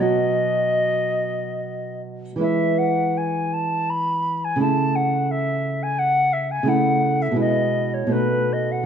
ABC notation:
X:1
M:3/4
L:1/16
Q:1/4=82
K:E
V:1 name="Flute"
d8- d2 z2 | e2 f2 g2 a2 b3 g | a2 f2 e3 g f2 e g | f3 e d3 c B2 d f |]
V:2 name="Nylon-string guitar" clef=bass
[B,,F,F]12 | [E,G,E]12 | [C,A,E]12 | [C,A,E]4 [B,,G,E]4 [B,,A,D]4 |]